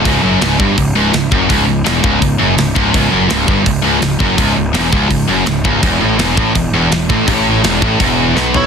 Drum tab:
HH |o-o-o-o-|o-o-o-o-|o-o-o-o-|o-o-o-o-|
SD |--o---o-|--o---o-|--o---o-|--o---o-|
FT |--------|--------|--------|--------|
BD |o--oo--o|o--oo--o|o--oo--o|o--oo--o|

HH |o-o-o-o-|o-o-o---|
SD |--o---o-|--o---o-|
FT |--------|-------o|
BD |o--oo--o|o--oo---|